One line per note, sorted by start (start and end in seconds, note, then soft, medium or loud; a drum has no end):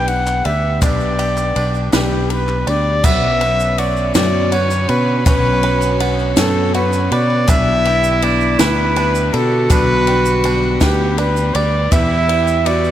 0.00 0.41 B1 medium
0.00 0.78 B1 medium
0.00 0.78 B2 medium
0.00 0.81 B3 medium
0.00 0.82 B3 medium
0.00 0.46 D4 medium
0.00 0.81 D4 medium
0.00 0.82 D4 medium
0.00 0.44 G4 medium
0.00 0.46 G4 medium
0.00 0.82 G4 medium
0.00 0.44 B4 medium
0.00 0.73 B4 medium
0.00 1.19 B4 medium
0.00 0.82 D5 medium
0.08 0.47 F#5 loud
0.08 ride medium
0.08 shaker soft
0.26 clap medium
0.26 shaker medium
0.44 0.79 D2 medium
0.44 0.81 D4 soft
0.44 0.81 G4 medium
0.44 0.82 B4 medium
0.44 1.93 D5 medium
0.44 0.82 E5 loud
0.44 ride medium
0.81 1.52 B1 medium
0.81 3.00 B1 medium
0.81 3.00 B2 medium
0.81 1.54 B3 medium
0.81 1.84 B3 medium
0.81 1.84 D4 medium
0.81 1.55 D4 medium
0.81 1.84 G4 medium
0.81 1.56 G4 medium
0.81 1.57 B4 medium
0.81 1.84 D5 medium
0.81 1.89 D5 loud
0.81 kick loud
0.81 clap loud
0.81 ride medium
0.81 shaker medium
1.00 shaker soft
1.19 2.67 G4 medium
1.19 ride medium
1.19 shaker soft
1.37 clap medium
1.37 shaker medium
1.55 1.90 B1 medium
1.55 1.93 B3 medium
1.55 3.04 D4 medium
1.55 1.92 D4 medium
1.55 1.92 G4 medium
1.55 1.91 B4 medium
1.55 ride medium
1.74 shaker soft
1.92 2.63 B1 medium
1.92 2.94 B3 medium
1.92 2.68 B3 medium
1.92 2.94 D4 medium
1.92 2.67 D4 medium
1.92 2.67 G4 medium
1.92 2.95 G4 medium
1.92 2.32 G4 medium
1.92 2.66 B4 medium
1.92 3.04 B4 medium
1.92 2.95 D5 medium
1.92 snare loud
1.92 clap medium
1.92 ride medium
1.92 shaker loud
2.12 clap soft
2.30 2.70 B4 loud
2.30 ride medium
2.49 clap medium
2.67 3.01 D2 medium
2.67 3.05 D4 medium
2.67 3.05 G4 medium
2.67 3.04 B4 medium
2.67 3.04 D5 medium
2.67 3.06 D5 loud
2.67 ride medium
3.03 4.11 B1 medium
3.03 3.41 B2 medium
3.03 7.44 D3 medium
3.03 3.41 F#3 medium
3.03 12.91 B3 medium
3.03 4.51 B3 loud
3.03 3.41 B3 medium
3.03 7.50 C#4 loud
3.03 7.44 F#4 medium
3.03 3.41 F#4 medium
3.03 3.40 C#5 loud
3.03 3.80 E5 loud
3.03 kick loud
3.03 clap medium
3.03 crash loud
3.03 shaker loud
3.41 3.77 B3 soft
3.41 3.79 F#4 medium
3.41 4.89 B4 medium
3.41 3.78 C#5 medium
3.41 ride medium
3.60 shaker medium
3.78 4.15 B3 medium
3.78 5.26 F#4 medium
3.78 4.14 F#4 medium
3.78 4.15 D5 loud
3.78 ride medium
3.97 shaker soft
4.15 4.85 F#2 loud
4.15 4.53 B2 medium
4.15 4.53 F#3 medium
4.15 4.51 B3 medium
4.15 4.52 F#4 medium
4.15 4.55 D5 loud
4.15 snare loud
4.15 clap medium
4.15 ride loud
4.15 shaker medium
4.52 4.89 B3 medium
4.52 5.99 B3 medium
4.52 4.89 F#4 medium
4.52 4.91 C#5 loud
4.52 4.88 C#5 medium
4.52 ride medium
4.52 shaker soft
4.71 clap soft
4.71 shaker medium
4.89 5.23 B2 medium
4.89 5.25 B3 medium
4.89 5.26 F#4 medium
4.89 5.26 B4 loud
4.89 5.26 C#5 medium
4.89 6.38 C#5 medium
4.89 ride medium
5.09 clap soft
5.26 6.33 B1 loud
5.26 5.63 B2 medium
5.26 5.63 F#3 medium
5.26 5.63 B3 medium
5.26 6.74 C#4 loud
5.26 5.62 F#4 medium
5.26 6.06 B4 loud
5.26 5.62 C#5 medium
5.26 kick loud
5.26 clap medium
5.26 ride medium
5.26 shaker medium
5.63 5.99 B3 soft
5.63 6.01 F#4 medium
5.63 7.11 B4 medium
5.63 6.00 C#5 medium
5.63 ride medium
5.82 shaker medium
6.00 6.37 B3 medium
6.00 7.49 B3 medium
6.00 6.37 F#4 medium
6.00 6.37 C#5 medium
6.00 ride medium
6.19 shaker soft
6.37 7.07 F#2 loud
6.37 6.75 B2 medium
6.37 6.75 F#3 medium
6.37 6.73 B3 medium
6.37 6.74 F#4 medium
6.37 6.72 A4 loud
6.37 6.75 C#5 medium
6.37 snare loud
6.37 clap loud
6.37 ride medium
6.37 shaker loud
6.74 7.11 B3 medium
6.74 7.49 F#4 medium
6.74 7.10 F#4 medium
6.74 7.14 B4 medium
6.74 7.12 C#5 medium
6.74 ride medium
6.74 shaker soft
6.93 clap soft
6.93 shaker medium
7.11 7.45 B2 loud
7.11 7.47 B3 medium
7.11 7.49 F#4 medium
7.11 7.49 B4 medium
7.11 7.51 D5 loud
7.11 ride medium
7.30 clap soft
7.48 8.55 B1 loud
7.48 11.88 D3 loud
7.48 12.91 G3 loud
7.48 7.85 B3 medium
7.48 7.85 D4 medium
7.48 8.22 D4 loud
7.48 9.34 E4 loud
7.48 7.85 G4 medium
7.48 7.84 B4 medium
7.48 8.25 E5 loud
7.48 kick loud
7.48 clap loud
7.48 ride medium
7.48 shaker loud
7.85 8.21 D4 soft
7.85 8.22 G4 medium
7.85 9.34 G4 medium
7.85 8.22 B4 medium
7.85 ride medium
8.04 shaker medium
8.22 8.59 B3 medium
8.22 8.59 D4 medium
8.22 8.96 D4 medium
8.22 8.59 G4 medium
8.22 8.58 B4 medium
8.22 8.61 D5 loud
8.22 ride medium
8.41 shaker soft
8.59 9.29 D2 loud
8.59 8.95 B3 medium
8.59 8.96 D4 medium
8.59 8.96 G4 medium
8.59 8.96 B4 medium
8.59 9.35 B4 loud
8.59 10.08 B4 medium
8.59 snare loud
8.59 clap medium
8.59 ride medium
8.59 shaker loud
8.96 9.33 B3 medium
8.96 9.69 D4 medium
8.96 9.34 D4 medium
8.96 9.34 G4 medium
8.96 9.32 B4 medium
8.96 ride medium
8.96 shaker soft
9.15 clap soft
9.15 shaker medium
9.33 9.67 B2 loud
9.33 9.69 D4 medium
9.33 11.55 F#4 loud
9.33 9.70 A4 medium
9.33 9.70 B4 medium
9.33 10.82 D5 medium
9.33 ride medium
9.52 clap soft
9.70 10.77 B1 loud
9.70 10.07 B3 medium
9.70 10.07 D4 medium
9.70 10.44 D4 medium
9.70 10.51 B4 loud
9.70 10.06 B4 medium
9.70 kick loud
9.70 clap medium
9.70 ride medium
9.70 shaker loud
10.07 11.56 G3 medium
10.07 10.44 D4 soft
10.07 10.44 B4 medium
10.07 clap soft
10.07 ride medium
10.26 shaker medium
10.44 10.80 B3 medium
10.44 10.80 D4 medium
10.44 11.17 D4 medium
10.44 10.79 B4 medium
10.44 clap soft
10.44 ride medium
10.44 shaker soft
10.63 clap soft
10.80 11.51 D2 loud
10.80 11.16 B3 medium
10.80 11.17 D4 medium
10.80 11.20 G4 loud
10.80 11.18 B4 medium
10.80 11.93 B4 medium
10.80 kick medium
10.80 snare loud
10.80 clap medium
10.80 ride medium
10.80 shaker loud
11.18 11.55 B3 medium
11.18 11.55 D4 medium
11.18 11.92 D4 medium
11.18 11.56 B4 loud
11.18 11.53 B4 medium
11.18 ride medium
11.18 shaker soft
11.37 shaker medium
11.54 11.89 D2 medium
11.54 11.92 D4 soft
11.54 11.92 G4 medium
11.54 11.92 B4 medium
11.54 11.94 D5 loud
11.54 11.93 D5 medium
11.54 clap soft
11.54 ride medium
11.91 12.91 E2 medium
11.91 12.91 E2 loud
11.91 12.29 E3 medium
11.91 12.91 E3 medium
11.91 12.91 G3 medium
11.91 12.91 B3 medium
11.91 12.29 B3 medium
11.91 12.91 E4 medium
11.91 12.65 E4 medium
11.91 12.62 E4 loud
11.91 12.29 E4 medium
11.91 12.28 G4 medium
11.91 12.91 B4 medium
11.91 12.27 B4 medium
11.91 12.91 E5 medium
11.91 12.68 E5 loud
11.91 kick loud
11.91 clap medium
11.91 ride medium
11.91 shaker loud
12.28 12.91 G3 medium
12.28 12.65 E4 medium
12.28 12.66 G4 soft
12.28 12.66 B4 medium
12.28 ride medium
12.47 shaker medium
12.65 12.91 B3 medium
12.65 12.91 E4 medium
12.65 12.91 F#4 loud
12.65 12.91 B4 medium
12.65 12.91 D5 loud
12.65 ride medium
12.84 shaker soft